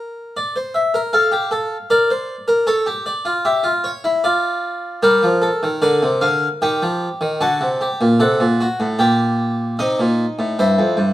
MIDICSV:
0, 0, Header, 1, 2, 480
1, 0, Start_track
1, 0, Key_signature, -2, "minor"
1, 0, Tempo, 771208
1, 233, Time_signature, 3, 2, 24, 8
1, 2156, Tempo, 791557
1, 6806, End_track
2, 0, Start_track
2, 0, Title_t, "Harpsichord"
2, 0, Program_c, 0, 6
2, 0, Note_on_c, 0, 70, 66
2, 218, Note_off_c, 0, 70, 0
2, 228, Note_on_c, 0, 74, 82
2, 346, Note_off_c, 0, 74, 0
2, 348, Note_on_c, 0, 72, 65
2, 464, Note_on_c, 0, 76, 51
2, 497, Note_off_c, 0, 72, 0
2, 587, Note_on_c, 0, 70, 71
2, 614, Note_off_c, 0, 76, 0
2, 704, Note_off_c, 0, 70, 0
2, 704, Note_on_c, 0, 77, 61
2, 705, Note_on_c, 0, 69, 72
2, 819, Note_on_c, 0, 67, 78
2, 823, Note_off_c, 0, 69, 0
2, 941, Note_off_c, 0, 67, 0
2, 941, Note_on_c, 0, 69, 76
2, 1093, Note_off_c, 0, 69, 0
2, 1173, Note_off_c, 0, 77, 0
2, 1184, Note_on_c, 0, 70, 75
2, 1185, Note_on_c, 0, 74, 65
2, 1304, Note_off_c, 0, 70, 0
2, 1310, Note_on_c, 0, 72, 80
2, 1459, Note_off_c, 0, 72, 0
2, 1542, Note_on_c, 0, 70, 80
2, 1655, Note_off_c, 0, 74, 0
2, 1660, Note_on_c, 0, 69, 94
2, 1662, Note_on_c, 0, 73, 78
2, 1663, Note_off_c, 0, 70, 0
2, 1782, Note_on_c, 0, 67, 75
2, 1783, Note_off_c, 0, 69, 0
2, 1815, Note_off_c, 0, 73, 0
2, 1905, Note_on_c, 0, 74, 65
2, 1935, Note_off_c, 0, 67, 0
2, 2024, Note_on_c, 0, 65, 77
2, 2058, Note_off_c, 0, 74, 0
2, 2147, Note_off_c, 0, 65, 0
2, 2147, Note_on_c, 0, 67, 82
2, 2148, Note_on_c, 0, 76, 69
2, 2260, Note_on_c, 0, 65, 85
2, 2267, Note_off_c, 0, 67, 0
2, 2299, Note_off_c, 0, 76, 0
2, 2384, Note_on_c, 0, 73, 68
2, 2413, Note_off_c, 0, 65, 0
2, 2507, Note_on_c, 0, 64, 79
2, 2536, Note_off_c, 0, 73, 0
2, 2626, Note_on_c, 0, 74, 68
2, 2627, Note_off_c, 0, 64, 0
2, 2628, Note_on_c, 0, 65, 82
2, 3092, Note_off_c, 0, 74, 0
2, 3093, Note_off_c, 0, 65, 0
2, 3103, Note_on_c, 0, 67, 84
2, 3104, Note_on_c, 0, 55, 99
2, 3104, Note_on_c, 0, 70, 80
2, 3223, Note_off_c, 0, 55, 0
2, 3225, Note_on_c, 0, 53, 83
2, 3253, Note_off_c, 0, 67, 0
2, 3340, Note_on_c, 0, 69, 70
2, 3375, Note_off_c, 0, 53, 0
2, 3469, Note_on_c, 0, 51, 89
2, 3492, Note_off_c, 0, 69, 0
2, 3572, Note_off_c, 0, 70, 0
2, 3583, Note_on_c, 0, 74, 69
2, 3584, Note_on_c, 0, 50, 93
2, 3586, Note_off_c, 0, 51, 0
2, 3587, Note_on_c, 0, 70, 81
2, 3704, Note_off_c, 0, 50, 0
2, 3709, Note_on_c, 0, 48, 95
2, 3735, Note_off_c, 0, 74, 0
2, 3823, Note_on_c, 0, 77, 72
2, 3824, Note_on_c, 0, 50, 90
2, 3828, Note_off_c, 0, 48, 0
2, 3976, Note_off_c, 0, 50, 0
2, 3976, Note_off_c, 0, 77, 0
2, 4058, Note_off_c, 0, 70, 0
2, 4070, Note_on_c, 0, 51, 99
2, 4070, Note_on_c, 0, 79, 83
2, 4071, Note_on_c, 0, 67, 73
2, 4189, Note_off_c, 0, 51, 0
2, 4192, Note_on_c, 0, 53, 97
2, 4342, Note_off_c, 0, 53, 0
2, 4427, Note_on_c, 0, 51, 83
2, 4537, Note_off_c, 0, 79, 0
2, 4538, Note_off_c, 0, 67, 0
2, 4547, Note_off_c, 0, 51, 0
2, 4547, Note_on_c, 0, 50, 95
2, 4547, Note_on_c, 0, 66, 81
2, 4548, Note_on_c, 0, 81, 85
2, 4666, Note_off_c, 0, 50, 0
2, 4670, Note_on_c, 0, 48, 77
2, 4697, Note_off_c, 0, 66, 0
2, 4791, Note_on_c, 0, 67, 66
2, 4819, Note_off_c, 0, 48, 0
2, 4911, Note_on_c, 0, 46, 81
2, 4940, Note_off_c, 0, 67, 0
2, 5015, Note_off_c, 0, 81, 0
2, 5026, Note_on_c, 0, 48, 97
2, 5028, Note_off_c, 0, 46, 0
2, 5028, Note_on_c, 0, 69, 77
2, 5029, Note_on_c, 0, 78, 77
2, 5145, Note_off_c, 0, 48, 0
2, 5150, Note_on_c, 0, 46, 82
2, 5178, Note_off_c, 0, 69, 0
2, 5273, Note_on_c, 0, 66, 74
2, 5299, Note_off_c, 0, 46, 0
2, 5391, Note_on_c, 0, 45, 85
2, 5421, Note_off_c, 0, 66, 0
2, 5495, Note_off_c, 0, 78, 0
2, 5505, Note_on_c, 0, 67, 66
2, 5507, Note_off_c, 0, 45, 0
2, 5507, Note_on_c, 0, 46, 77
2, 5508, Note_on_c, 0, 79, 73
2, 5976, Note_off_c, 0, 67, 0
2, 5977, Note_off_c, 0, 46, 0
2, 5977, Note_off_c, 0, 79, 0
2, 5992, Note_on_c, 0, 63, 64
2, 5993, Note_on_c, 0, 48, 74
2, 5993, Note_on_c, 0, 75, 62
2, 6111, Note_off_c, 0, 48, 0
2, 6116, Note_on_c, 0, 46, 60
2, 6265, Note_off_c, 0, 46, 0
2, 6355, Note_on_c, 0, 45, 65
2, 6461, Note_off_c, 0, 63, 0
2, 6461, Note_off_c, 0, 75, 0
2, 6472, Note_off_c, 0, 45, 0
2, 6477, Note_on_c, 0, 64, 60
2, 6478, Note_on_c, 0, 43, 69
2, 6479, Note_on_c, 0, 72, 61
2, 6593, Note_off_c, 0, 43, 0
2, 6596, Note_on_c, 0, 41, 68
2, 6708, Note_on_c, 0, 43, 70
2, 6712, Note_off_c, 0, 41, 0
2, 6806, Note_off_c, 0, 43, 0
2, 6806, Note_off_c, 0, 64, 0
2, 6806, Note_off_c, 0, 72, 0
2, 6806, End_track
0, 0, End_of_file